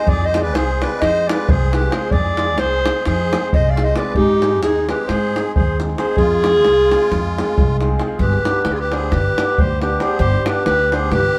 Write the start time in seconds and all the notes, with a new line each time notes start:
Already playing: G#3
0.07 F2 G#4 D5, davul low
0.21 C5 D#5, davul high
0.34 G#3 C4 F4 G#4, davul high
0.42 B4 D5
0.54 C2 G#4 C5, davul high
0.69 davul high
0.81 G#3 C4 F4 G#4 B4 D5, davul high
1.00 F2 C5 D#5, davul high
1.16 davul high
1.27 G#3 C4 F4 G#4 B4 D5, davul high
1.49 C2 G#4 C5, davul low
1.71 G#3 C4 F4 G4 G#4 B4, davul high
1.83 davul high
1.91 G#3 C4 F4 G#4 C5, davul high
2.11 F2 G#4 D5, davul low
2.25 davul high
2.37 G#3 C4 F4 G#4, davul high
2.58 C2 G#4 C5, davul high
2.72 davul high
2.85 G#3 C4 F4 G#4, davul high
3.05 F2 G#4 C5, davul high
3.19 davul high
3.33 G#3 C4 F4 G#4, davul high
3.53 C2 C5 D#5, davul low
3.68 D5 F5
3.76 G#3 C4 F4 G#4, davul high
3.82 C5 D#5
3.87 davul high
3.95 G#3 C4 F4 G#4 B4 D5, davul high
4.15 G#2 D#4 G4, davul low
4.29 davul high
4.42 G#3 C4 D#4 G#4, davul high
4.62 D#2 D#4 G#4, davul high
4.76 davul high
4.89 G#3 C4 D#4 G4 G#4 B4, davul high
5.07 G#2 G#4 C5, davul high
5.23 davul high
5.36 G#3 C4 D#4 G#4, davul high
5.56 D#2 G#4 C5, davul low
5.79 G#3 C4 D#4 G#4, davul high
5.89 davul high
5.98 G#3 C4 D#4 G#4 C5, davul high
6.17 F2 F4 G#4, davul low
6.31 davul high
6.44 G#3 C4 F4 G#4, davul high
6.65 C2, davul high
6.91 G#3 C4 F4 G#4, davul high
7.12 F2, davul high, davul low
7.38 G#3 C4 F4 G#4, davul high
7.48 davul high
7.58 C2, davul low
7.70 davul high
7.81 G#3 C4 F4 G#4, davul high
7.99 G#3 C4 F4 G#4, davul high
8.19 G1 G4 B4, davul low
8.32 davul high
8.45 G3 B3 D4 G4, davul high
8.65 D2 G4 B4, davul high
8.72 F4 G#4
8.79 G4 B4
8.91 G3 B3 D4 G4 G#4 C5, davul high
9.12 G1 G4 B4, davul high, davul low
9.38 G3 B3 D4 G4, davul high
9.58 D2 G4 C5, davul low
9.80 G3 B3 D4 G4 B4, davul high
10.00 G3 B3 D4 G4 G#4 C5, davul high
10.19 G1 G4 C5, davul low
10.33 davul high
10.45 G3 B3 D4 G4 B4, davul high
10.66 D2 G4 B4, davul high
10.91 G3 B3 D4 G4 G#4 C5, davul high
11.12 G1 G4 B4, davul high, davul low